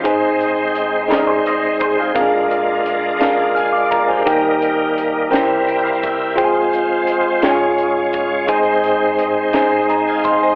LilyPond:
<<
  \new Staff \with { instrumentName = "Tine electric piano" } { \time 6/8 \key aes \major \tempo 4. = 57 << { r2. | r2 <aes'' f'''>16 <f'' d'''>16 <d'' bes''>16 <c'' aes''>16~ | <c'' aes''>16 r2 r8. | r2. |
r2 bes''8 <ees'' c'''>16 <c'' aes''>16 | } \\ { <ees' aes' c'' aes''>4. <ees' aes' c'' d'' ees''>4. | <c' d' aes' bes' f''>4. <d' aes' bes' f''>4. | <ees' g' bes' g''>4. <des' e' bes' c'' g''>4. | <f' aes' c'' g'' aes''>4. <f' aes' des'' g'' aes''>4. |
<ees' aes' c'' aes''>4. <ees' aes' c'' aes''>4. | } >> }
  \new Staff \with { instrumentName = "Tine electric piano" } { \clef bass \time 6/8 \key aes \major aes,2. | <bes,, bes,>2. | <ees, ees>4. <c, c>4. | f,4. aes,4. |
aes,2. | }
  \new Staff \with { instrumentName = "Tonewheel organ" } { \time 6/8 \key aes \major << { r2. | r2 <f'' aes''>16 <d'' f''>16 <bes' d''>16 <g' bes'>16~ | <g' bes'>16 r4. r16 g''16 f''16 e''8 | r2. |
r2 r16 <f'' aes''>16 f''16 <c'' ees''>16 | } \\ { <aes c' ees' ces'' c''>2. | <aes d' f' bes'>2. | <g bes ees' bes'>4. <g c' e' bes'>4. | <aes c' f' c''>4. <aes des' f' des''>4. |
<aes c' ees' c''>2. | } >> }
  \new Staff \with { instrumentName = "Clean electric guitar" } { \time 6/8 \key aes \major r4. <g' bes'>16 <aes' c''>16 <c'' ees''>8 <aes' c''>16 <f' aes'>16~ | <f' aes'>16 r2 r8. | r2. | r2. |
r2. | }
  \new DrumStaff \with { instrumentName = "Drums" } \drummode { \time 6/8 <hh bd>8 hh8 hh8 <hh sn>8 hh8 <hh bd>8 | <hh bd>8 hh8 hh8 <hh sn>8 hh8 <hh bd>8 | <hh bd>8 hh8 hh8 <hh sn>8 hh8 <hh bd>8 | <hh bd>8 hh8 hh8 <hh sn>8 hh8 <hh bd>8 |
<hh bd>8 hh8 hh8 <hh sn>8 hh8 <hh bd>8 | }
>>